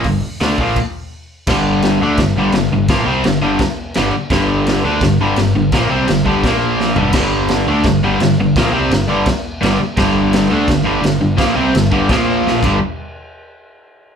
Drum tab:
CC |----x---|x-x-x-x-|x-x-x-x-|x-x-x-x-|
HH |o-o-----|--------|--------|--------|
SD |--o-----|o-o-o-o-|o-o-o-o-|o-o-o-o-|
FT |--------|--------|--------|--------|
BD |o--oo---|o---o---|o---o---|o---o---|

CC |x-x-x---|x-x-x-x-|x-x-x-x-|x-x-x-x-|
HH |--------|--------|--------|--------|
SD |o-o-o-o-|o-o-o-o-|o-o-o-o-|o-o-o-o-|
FT |-------o|--------|--------|--------|
BD |o--oo---|o---o---|o---o---|o---o---|

CC |x-x-x--x|--------|
HH |--------|--------|
SD |o-o-o-o-|--------|
FT |--------|--------|
BD |o--oo--o|--------|